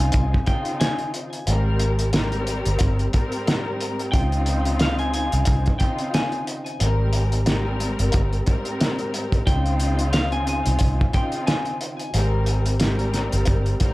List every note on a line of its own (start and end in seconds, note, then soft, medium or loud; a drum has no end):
0.00 0.11 C2 medium
0.00 0.35 C#3 loud
0.00 1.44 D#3 medium
0.00 0.36 C4 loud
0.00 1.44 C4 medium
0.00 0.36 D#4 loud
0.00 1.44 D#4 medium
0.00 0.36 F4 loud
0.00 1.44 F4 medium
0.00 0.44 G#5 medium
0.12 0.40 C2 medium
0.12 kick loud
0.12 closed hi-hat loud
0.34 kick medium
0.46 1.25 C#3 medium
0.46 1.25 C4 medium
0.46 1.25 D#4 medium
0.46 1.25 F4 loud
0.46 0.77 G5 medium
0.46 kick medium
0.46 closed hi-hat medium
0.65 closed hi-hat soft
0.80 1.10 G#5 medium
0.80 snare loud
0.80 closed hi-hat loud
0.99 closed hi-hat soft
1.14 closed hi-hat medium
1.33 closed hi-hat soft
1.47 2.62 G#1 loud
1.47 2.09 G#2 loud
1.47 4.12 G3 medium
1.47 2.10 G3 medium
1.47 9.44 C4 medium
1.47 2.10 C4 medium
1.47 4.12 G4 medium
1.47 2.10 A#4 loud
1.47 closed hi-hat medium
1.80 closed hi-hat medium
1.99 closed hi-hat medium
2.13 3.07 G#2 loud
2.13 3.07 G3 loud
2.13 3.07 C4 medium
2.13 3.07 A#4 loud
2.13 snare loud
2.13 closed hi-hat medium
2.32 closed hi-hat soft
2.47 closed hi-hat medium
2.66 2.78 G1 medium
2.66 closed hi-hat medium
2.79 3.07 G1 medium
2.79 kick loud
2.79 closed hi-hat loud
2.99 closed hi-hat soft
3.13 4.07 G#2 loud
3.13 4.07 G3 medium
3.13 4.07 C4 loud
3.13 4.07 A#4 loud
3.13 kick loud
3.13 closed hi-hat medium
3.32 closed hi-hat soft
3.47 snare loud
3.47 closed hi-hat loud
3.81 closed hi-hat medium
3.99 closed hi-hat soft
4.12 5.29 C#2 loud
4.12 5.69 C#3 loud
4.12 6.78 D#3 medium
4.12 5.69 C4 loud
4.12 6.78 D#4 medium
4.12 5.69 D#4 loud
4.12 6.78 F4 medium
4.12 5.69 F4 loud
4.12 4.75 G5 loud
4.12 kick loud
4.12 closed hi-hat medium
4.32 closed hi-hat soft
4.46 closed hi-hat medium
4.65 closed hi-hat medium
4.79 4.98 F5 medium
4.79 snare loud
4.79 closed hi-hat loud
4.99 5.12 G#5 medium
4.99 closed hi-hat soft
5.14 5.77 G#5 medium
5.14 closed hi-hat medium
5.32 5.44 C2 medium
5.32 closed hi-hat medium
5.45 5.74 C2 medium
5.45 kick loud
5.45 closed hi-hat loud
5.66 kick medium
5.66 closed hi-hat soft
5.79 6.58 C#3 medium
5.79 6.58 C4 medium
5.79 6.58 D#4 medium
5.79 6.58 F4 loud
5.79 6.10 G5 medium
5.79 kick loud
5.79 closed hi-hat medium
5.98 closed hi-hat soft
6.14 6.44 G#5 medium
6.14 snare loud
6.14 closed hi-hat loud
6.32 closed hi-hat soft
6.47 closed hi-hat medium
6.66 closed hi-hat soft
6.79 7.96 G#1 loud
6.79 7.43 G#2 loud
6.79 9.44 G3 medium
6.79 7.43 G3 medium
6.79 7.43 C4 medium
6.79 9.44 G4 medium
6.79 7.43 A#4 loud
6.79 closed hi-hat medium
7.13 closed hi-hat medium
7.32 closed hi-hat medium
7.46 8.40 G#2 loud
7.46 8.40 G3 loud
7.46 8.40 C4 medium
7.46 8.40 A#4 loud
7.46 snare loud
7.46 closed hi-hat loud
7.80 closed hi-hat medium
7.99 8.11 G1 medium
7.99 closed hi-hat medium
8.12 8.40 G1 medium
8.12 kick loud
8.12 closed hi-hat loud
8.33 closed hi-hat soft
8.46 9.40 G#2 loud
8.46 9.40 G3 medium
8.46 9.40 C4 medium
8.46 9.41 A#4 loud
8.46 kick loud
8.46 closed hi-hat medium
8.65 closed hi-hat soft
8.81 snare loud
8.81 closed hi-hat loud
8.99 closed hi-hat soft
9.14 closed hi-hat medium
9.32 kick medium
9.32 closed hi-hat soft
9.47 10.62 C#2 loud
9.47 11.02 C#3 loud
9.47 12.11 D#3 medium
9.47 12.11 C4 medium
9.47 11.02 C4 loud
9.47 12.11 D#4 medium
9.47 11.03 D#4 loud
9.47 12.11 F4 medium
9.47 11.03 F4 loud
9.47 10.10 G5 loud
9.47 kick loud
9.47 closed hi-hat medium
9.66 closed hi-hat soft
9.80 closed hi-hat medium
9.99 closed hi-hat medium
10.13 10.31 F5 medium
10.13 snare loud
10.13 closed hi-hat medium
10.32 10.46 G#5 medium
10.32 closed hi-hat soft
10.47 11.11 G#5 medium
10.47 closed hi-hat medium
10.66 10.78 C2 medium
10.66 closed hi-hat medium
10.79 11.07 C2 medium
10.79 kick loud
10.79 closed hi-hat loud
11.01 kick medium
11.13 11.91 C#3 medium
11.13 11.92 C4 medium
11.13 11.92 D#4 medium
11.13 11.92 F4 loud
11.13 11.44 G5 medium
11.13 kick medium
11.13 closed hi-hat medium
11.32 closed hi-hat soft
11.47 11.77 G#5 medium
11.47 snare loud
11.47 closed hi-hat loud
11.65 closed hi-hat soft
11.81 closed hi-hat medium
11.99 closed hi-hat soft
12.14 13.29 G#1 loud
12.14 12.76 G#2 loud
12.14 12.76 G3 medium
12.14 13.94 G3 medium
12.14 13.94 C4 medium
12.14 12.77 C4 medium
12.14 13.94 G4 medium
12.14 12.77 A#4 loud
12.14 closed hi-hat loud
12.46 closed hi-hat medium
12.66 closed hi-hat medium
12.80 13.73 G#2 loud
12.80 13.73 G3 loud
12.80 13.74 C4 medium
12.80 13.74 A#4 loud
12.80 snare loud
12.80 closed hi-hat medium
12.99 closed hi-hat soft
13.14 snare soft
13.14 closed hi-hat medium
13.32 13.45 G1 medium
13.32 closed hi-hat medium
13.45 13.74 G1 medium
13.45 kick medium
13.45 closed hi-hat loud
13.66 closed hi-hat soft
13.80 13.94 G#2 loud
13.80 13.94 G3 medium
13.80 13.94 C4 medium
13.80 13.94 A#4 loud
13.80 kick loud
13.80 closed hi-hat medium